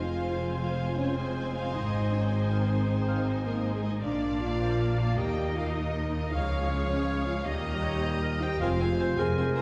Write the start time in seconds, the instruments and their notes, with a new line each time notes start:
Already playing: double bass section F1, cello section F2, trombone section F3 G#3, viola section C4 F4, clarinet C5, trumpet section C5, violin section C5 G#5
0.01 french horn section F4, violin section F5, flute section F5
0.59 french horn section F4, flute section F5, violin section F5
0.97 french horn section C#4, flute section C#5, violin section C#5
1.16 french horn section C4, clarinet G#4, flute section C5, violin section C5
1.55 french horn section F4, violin section F5, flute section F5
1.74 double bass section G#1, cello section G#2, trombone section D#3, french horn section D#4, viola section D#4, clarinet C5, flute section D#5, violin section D#5
2.13 french horn section C#4, violin section C#5, flute section C#5
2.32 french horn section C4, violin section C5, flute section C5, clarinet D#5
2.51 clarinet A#4
2.70 clarinet C5
2.88 french horn section C4, clarinet G#4, flute section C5, violin section C5
3.08 clarinet F5
3.28 clarinet D#5
3.46 french horn section A#3, violin section A#4, flute section A#4
3.75 french horn section G#3, violin section G#4, flute section G#4
3.84 french horn section D#4, violin section D#5, flute section D#5
4.03 double bass section A#1, cello section A#2, trombone section A#2 A#3, viola section A#3 D4, french horn section D4, violin section D5 F5, flute section D5, trumpet section D5, clarinet D5
4.41 french horn section F4, violin section F5, flute section F5
4.61 clarinet C5
4.80 clarinet A#4
4.98 french horn section F4, clarinet D5, violin section F5, flute section F5
5.17 double bass section D#2, cello section D#2, viola section D#4, french horn section G4, violin section A#4 D#5 G5, trumpet section D#5, clarinet D#5, flute section G5
5.56 french horn section F4, flute section F5, violin section F5
5.76 french horn section D#4, violin section D#5, flute section D#5
6.13 french horn section D#4, violin section D#5, flute section D#5
6.32 cello section C#2, double bass section C#2, trombone section C#3 G#3, viola section F3 G#4, french horn section F4, trumpet section C#5, violin section C#5 F5, clarinet F5, flute section F5
6.70 french horn section C#4, flute section C#5, violin section C#5
6.88 french horn section C#4, flute section C#5, violin section C#5, clarinet F5
7.27 french horn section F4, flute section F5, violin section F5
7.45 cello section D#2, double bass section D#2, trombone section A#2 G3, viola section G3 G4, french horn section D#4, violin section D#5 A#5, trumpet section D#5, clarinet D#5, flute section D#5
7.65 clarinet A#4
7.83 clarinet C#5
8.03 clarinet C5
8.22 clarinet A#4
8.41 french horn section G4, clarinet C5, violin section G5, flute section G5
8.60 double bass section F1, cello section F2, trombone section C3 G#3, viola section C4 F4, french horn section F4, clarinet A#4, trumpet section C5, violin section C5 F5 G#5, flute section F5
8.80 viola section C4 F4, clarinet G#4, violin section C5 G#5
8.99 viola section C4 F4, violin section C5 G#5, clarinet C5
9.17 double bass section F1, cello section F2, viola section C4 F4, french horn section G#4, clarinet A#4, violin section C5 G#5, flute section G#5
9.37 viola section C4 F4, violin section C5 G#5
9.55 viola section C4 F4, french horn section A#4, violin section C5 G#5 A#5, flute section A#5